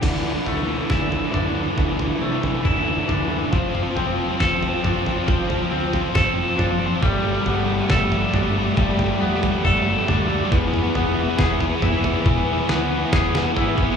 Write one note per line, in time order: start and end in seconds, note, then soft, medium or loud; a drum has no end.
0.02 0.36 D2 medium
0.02 0.08 D3 medium
0.02 2.21 D3 medium
0.02 0.10 E3 medium
0.02 kick medium
0.02 floor tom medium
0.02 crash loud
0.09 0.16 D3 soft
0.09 0.18 E3 medium
0.17 0.24 D3 medium
0.17 0.24 E3 medium
0.24 0.32 D3 soft
0.24 0.32 E3 soft
0.32 0.40 D3 medium
0.32 0.41 E3 medium
0.40 0.47 D3 soft
0.40 0.49 E3 medium
0.46 0.80 D2 medium
0.46 0.55 D3 medium
0.46 0.55 E3 medium
0.46 2.21 A3 medium
0.46 floor tom medium
0.55 0.62 D3 medium
0.55 0.63 E3 medium
0.63 0.70 D3 medium
0.63 0.71 E3 medium
0.70 0.78 D3 medium
0.70 0.78 E3 medium
0.78 0.85 D3 medium
0.78 0.86 E3 medium
0.86 0.93 D3 medium
0.86 0.93 E3 medium
0.86 2.64 E4 medium
0.86 snare medium
0.90 1.23 D2 medium
0.90 0.99 D3 medium
0.90 1.01 E3 medium
0.90 kick loud
1.00 1.07 D3 medium
1.00 1.09 E3 medium
1.09 1.16 D3 medium
1.09 1.17 E3 medium
1.09 floor tom medium
1.16 1.23 D3 medium
1.16 1.23 E3 medium
1.23 1.31 D3 medium
1.23 1.31 E3 medium
1.32 1.67 D2 medium
1.32 1.38 D3 medium
1.32 1.40 E3 medium
1.32 3.08 D4 medium
1.32 floor tom medium
1.32 mid tom medium
1.39 1.46 D3 medium
1.39 1.46 E3 medium
1.46 1.53 D3 medium
1.46 1.54 E3 medium
1.54 1.61 D3 medium
1.54 1.62 E3 medium
1.62 1.69 D3 medium
1.62 1.69 E3 medium
1.70 1.76 D3 medium
1.70 1.77 E3 medium
1.77 2.11 D2 medium
1.77 1.84 D3 medium
1.77 1.85 E3 medium
1.77 kick loud
1.77 floor tom medium
1.85 1.92 D3 medium
1.85 1.93 E3 medium
1.92 2.00 D3 medium
1.92 2.00 E3 medium
1.99 2.06 D3 medium
1.99 2.07 E3 medium
1.99 floor tom medium
2.07 2.14 D3 medium
2.07 2.15 E3 medium
2.15 2.22 D3 medium
2.15 2.23 E3 medium
2.21 2.55 C3 medium
2.21 2.30 D3 medium
2.21 2.31 E3 medium
2.21 3.95 A3 medium
2.31 2.38 D3 medium
2.31 2.38 E3 medium
2.38 2.46 D3 medium
2.38 2.46 E3 medium
2.43 2.53 D3 medium
2.43 2.53 E3 medium
2.43 floor tom medium
2.53 2.61 D3 medium
2.53 2.61 E3 medium
2.61 2.67 D3 medium
2.61 2.69 E3 medium
2.61 3.53 E4 medium
2.65 2.98 D2 medium
2.65 2.75 D3 medium
2.65 kick loud
2.65 mid tom medium
2.69 2.76 E3 medium
2.76 2.83 D3 medium
2.76 2.84 E3 medium
2.84 2.91 D3 medium
2.84 2.92 E3 medium
2.92 2.98 D3 medium
2.92 2.99 E3 medium
2.98 3.06 D3 medium
2.98 3.07 E3 medium
3.07 3.42 D2 medium
3.07 3.14 D3 medium
3.07 3.14 E3 medium
3.07 3.99 D4 medium
3.07 floor tom medium
3.07 mid tom medium
3.14 3.22 D3 medium
3.14 3.22 E3 medium
3.22 3.28 D3 medium
3.22 3.29 E3 medium
3.28 3.36 D3 soft
3.28 3.37 E3 medium
3.38 3.45 D3 medium
3.38 3.46 E3 medium
3.45 3.53 D3 soft
3.45 3.52 E3 medium
3.52 3.86 F1 medium
3.52 5.26 F3 medium
3.52 3.58 F3 medium
3.52 3.60 C4 medium
3.52 kick loud
3.52 floor tom medium
3.59 3.66 F3 medium
3.59 3.68 C4 medium
3.67 3.74 F3 medium
3.67 3.75 C4 medium
3.75 3.82 F3 medium
3.75 3.83 C4 medium
3.75 mid tom medium
3.83 3.90 F3 medium
3.83 3.90 C4 medium
3.90 3.98 F3 medium
3.90 3.99 C4 medium
3.96 4.29 F1 medium
3.96 4.05 F3 medium
3.96 5.70 C4 medium
3.96 4.06 C4 medium
3.96 floor tom medium
4.06 4.12 F3 medium
4.06 4.15 C4 medium
4.12 4.19 F3 medium
4.12 4.23 C4 medium
4.20 4.27 F3 medium
4.20 4.31 C4 medium
4.29 4.35 F3 medium
4.29 4.36 C4 medium
4.36 4.43 F3 medium
4.36 4.45 C4 medium
4.40 4.73 F1 medium
4.40 6.13 A4 medium
4.40 kick loud
4.40 snare medium
4.44 4.51 F3 medium
4.44 4.54 C4 medium
4.51 4.58 F3 medium
4.51 4.62 C4 medium
4.58 4.66 F3 medium
4.62 4.69 C4 medium
4.62 floor tom medium
4.67 4.74 F3 medium
4.67 4.76 C4 medium
4.74 4.81 F3 medium
4.74 4.84 C4 medium
4.82 5.17 F1 medium
4.82 4.89 F3 medium
4.82 4.93 C4 medium
4.82 6.57 D4 medium
4.82 floor tom medium
4.82 mid tom medium
4.89 4.96 F3 medium
4.89 5.01 C4 medium
4.96 5.04 F3 medium
5.02 5.12 F3 medium
5.02 5.08 C4 medium
5.06 5.16 C4 medium
5.06 floor tom medium
5.13 5.18 F3 medium
5.13 5.24 C4 medium
5.18 5.26 F3 medium
5.24 5.34 F3 medium
5.24 7.02 F3 medium
5.24 5.31 C4 medium
5.28 5.61 F1 medium
5.28 5.39 C4 medium
5.28 kick loud
5.28 floor tom medium
5.34 5.42 F3 medium
5.39 5.50 F3 medium
5.39 5.47 C4 medium
5.48 5.57 F3 medium
5.48 5.54 C4 medium
5.48 floor tom medium
5.55 5.65 F3 medium
5.55 5.61 C4 medium
5.62 5.73 F3 medium
5.62 5.69 C4 medium
5.70 6.04 D2 medium
5.70 5.79 F3 medium
5.70 5.78 C4 medium
5.70 7.02 C4 medium
5.78 5.87 F3 medium
5.78 5.85 C4 medium
5.86 5.95 F3 medium
5.86 5.93 C4 medium
5.93 6.03 F3 medium
5.93 6.01 C4 medium
5.93 floor tom medium
6.02 6.11 F3 medium
6.02 6.09 C4 medium
6.09 6.18 F3 medium
6.09 6.17 C4 medium
6.15 6.48 F1 medium
6.15 6.26 F3 medium
6.15 6.25 C4 medium
6.15 7.02 A4 medium
6.15 kick loud
6.15 snare medium
6.15 mid tom medium
6.25 6.34 F3 medium
6.25 6.33 C4 medium
6.33 6.42 F3 medium
6.33 6.39 C4 medium
6.40 6.49 F3 medium
6.40 6.48 C4 medium
6.48 6.56 F3 medium
6.48 6.56 C4 medium
6.56 6.92 F#1 medium
6.56 6.64 F3 medium
6.56 6.63 C4 medium
6.56 7.02 D4 medium
6.56 floor tom medium
6.56 mid tom medium
6.63 6.72 F3 soft
6.63 6.71 C4 medium
6.72 6.79 F3 medium
6.72 6.79 C4 medium
6.80 6.86 F3 soft
6.80 6.86 C4 medium
6.86 6.94 F3 medium
6.86 6.94 C4 medium
6.94 7.02 F3 medium
6.94 7.02 C4 medium
7.02 7.36 G1 medium
7.02 8.76 G3 medium
7.02 7.09 G3 medium
7.02 7.10 A3 medium
7.02 kick loud
7.02 floor tom medium
7.10 7.17 G3 soft
7.10 7.18 A3 medium
7.17 7.25 G3 medium
7.17 7.26 A3 medium
7.25 7.33 G3 medium
7.25 7.34 A3 medium
7.33 7.41 G3 medium
7.33 7.41 A3 medium
7.41 7.49 G3 medium
7.41 7.49 A3 medium
7.46 7.79 G1 medium
7.46 7.55 G3 medium
7.46 7.57 A3 medium
7.46 9.20 B3 medium
7.46 floor tom medium
7.56 7.63 G3 medium
7.56 7.64 A3 medium
7.64 7.72 G3 medium
7.64 7.72 A3 medium
7.73 7.79 G3 medium
7.73 7.80 A3 medium
7.79 7.86 G3 medium
7.79 7.87 A3 medium
7.87 8.23 G1 medium
7.87 7.94 G3 medium
7.87 7.95 A3 medium
7.87 9.64 A4 medium
7.87 kick loud
7.87 snare medium
7.95 8.03 G3 medium
7.95 8.03 A3 medium
8.04 8.10 G3 medium
8.04 8.11 A3 medium
8.11 8.17 G3 medium
8.11 8.19 A3 medium
8.11 floor tom medium
8.18 8.25 G3 medium
8.18 8.26 A3 medium
8.27 8.34 G3 medium
8.27 8.34 A3 medium
8.34 8.67 G1 medium
8.34 8.42 G3 medium
8.34 8.42 A3 medium
8.34 10.07 D4 medium
8.34 floor tom medium
8.34 mid tom medium
8.42 8.49 G3 medium
8.42 8.50 A3 medium
8.50 8.57 G3 medium
8.50 8.58 A3 medium
8.57 8.65 G3 medium
8.57 8.66 A3 medium
8.65 8.73 G3 medium
8.65 8.73 A3 medium
8.74 9.10 G1 loud
8.74 8.80 G3 medium
8.74 10.52 G3 medium
8.74 8.82 A3 medium
8.74 kick loud
8.74 floor tom medium
8.80 8.88 G3 medium
8.80 8.89 A3 medium
8.89 8.96 G3 medium
8.89 8.96 A3 medium
8.96 9.03 G3 medium
8.96 9.04 A3 medium
8.96 floor tom medium
9.04 9.10 G3 medium
9.04 9.12 A3 medium
9.10 9.18 G3 medium
9.10 9.20 A3 medium
9.19 9.54 F2 medium
9.19 9.26 G3 medium
9.19 9.26 A3 medium
9.19 10.51 B3 medium
9.26 9.34 G3 medium
9.26 9.34 A3 medium
9.35 9.41 G3 medium
9.35 9.43 A3 medium
9.42 9.49 G3 medium
9.42 9.50 A3 medium
9.42 floor tom medium
9.50 9.58 G3 medium
9.50 9.58 A3 medium
9.58 9.66 G3 medium
9.58 9.66 A3 medium
9.65 9.97 G1 medium
9.65 9.73 G3 medium
9.65 9.74 A3 medium
9.65 10.52 A4 medium
9.65 kick loud
9.65 mid tom medium
9.74 9.82 G3 medium
9.74 9.81 A3 medium
9.82 9.88 G3 medium
9.82 9.90 A3 medium
9.88 9.96 G3 medium
9.88 9.97 A3 medium
9.97 10.05 G3 medium
9.97 10.05 A3 medium
10.05 10.41 D2 medium
10.05 10.11 G3 medium
10.05 10.12 A3 medium
10.05 10.52 D4 medium
10.05 floor tom medium
10.05 mid tom medium
10.12 10.20 G3 medium
10.12 10.21 A3 medium
10.20 10.27 G3 medium
10.20 10.28 A3 medium
10.27 10.35 G3 medium
10.27 10.36 A3 medium
10.36 10.44 G3 soft
10.36 10.43 A3 medium
10.44 10.51 G3 medium
10.44 10.52 A3 medium
10.51 10.84 E1 medium
10.51 12.69 E2 medium
10.51 10.58 E3 medium
10.51 10.60 B3 medium
10.51 kick loud
10.51 floor tom medium
10.59 10.66 E3 medium
10.59 10.67 B3 medium
10.67 10.73 E3 medium
10.67 10.74 B3 medium
10.74 10.81 E3 medium
10.74 10.83 B3 medium
10.74 mid tom medium
10.83 10.90 E3 medium
10.83 10.89 B3 medium
10.90 10.97 E3 medium
10.90 10.97 B3 medium
10.95 11.28 E1 medium
10.95 11.05 E3 medium
10.95 12.68 B3 medium
10.95 11.06 B3 medium
10.95 floor tom medium
11.06 11.13 E3 medium
11.06 11.13 B3 medium
11.13 11.21 E3 medium
11.13 11.21 B3 medium
11.21 11.28 E3 medium
11.21 11.29 B3 medium
11.29 11.36 E3 medium
11.29 11.37 B3 medium
11.37 11.71 E1 medium
11.37 11.44 E3 medium
11.37 11.45 B3 medium
11.37 13.12 G#4 medium
11.37 kick loud
11.37 snare medium
11.45 11.51 E3 medium
11.45 11.53 B3 medium
11.52 11.60 E3 medium
11.52 11.61 B3 medium
11.60 11.67 E3 medium
11.60 11.69 B3 medium
11.60 floor tom medium
11.67 11.75 E3 medium
11.67 11.76 B3 medium
11.76 11.82 E3 medium
11.76 11.83 B3 medium
11.82 12.15 E1 medium
11.82 11.90 E3 medium
11.82 11.90 B3 medium
11.82 13.55 E4 medium
11.82 floor tom medium
11.82 mid tom medium
11.90 11.98 E3 medium
11.90 11.99 B3 medium
11.98 12.05 E3 medium
11.98 12.05 B3 medium
12.04 12.13 E3 medium
12.04 12.13 B3 medium
12.04 floor tom medium
12.14 12.21 E3 medium
12.14 12.21 B3 medium
12.21 12.28 E3 medium
12.21 12.29 B3 medium
12.26 12.59 E1 loud
12.26 13.96 E3 medium
12.26 12.36 E3 medium
12.26 12.37 B3 medium
12.26 kick loud
12.26 high tom medium
12.37 12.44 E3 medium
12.37 12.45 B3 medium
12.45 12.52 E3 medium
12.45 12.53 B3 medium
12.52 12.60 E3 medium
12.52 12.61 B3 medium
12.60 12.67 E3 medium
12.60 12.69 B3 medium
12.68 13.02 D2 medium
12.68 12.75 E3 medium
12.68 12.75 B3 medium
12.68 13.96 B3 medium
12.68 snare medium
12.75 12.82 E3 medium
12.75 12.83 B3 medium
12.82 12.90 E3 medium
12.82 12.91 B3 medium
12.90 12.98 E3 medium
12.90 12.99 B3 medium
12.99 13.05 E3 medium
12.99 13.06 B3 medium
13.05 13.13 E3 medium
13.05 13.14 B3 medium
13.13 13.45 E1 medium
13.13 13.22 E3 medium
13.13 13.22 B3 medium
13.13 13.96 G#4 medium
13.13 kick loud
13.13 snare medium
13.22 13.29 E3 medium
13.22 13.30 B3 medium
13.29 13.37 E3 medium
13.29 13.37 B3 medium
13.35 13.46 E3 medium
13.35 13.45 B3 medium
13.35 snare medium
13.46 13.52 E3 medium
13.46 13.53 B3 medium
13.52 13.60 E3 medium
13.52 13.61 B3 medium
13.52 13.96 E4 medium
13.57 13.89 G#1 medium
13.57 13.67 E3 medium
13.57 floor tom medium
13.61 13.68 B3 medium
13.68 13.75 E3 medium
13.68 13.76 B3 medium
13.76 13.82 E3 medium
13.76 13.84 B3 medium
13.76 kick medium
13.82 13.90 E3 medium
13.82 13.91 B3 medium
13.91 13.96 E3 medium
13.91 13.96 B3 medium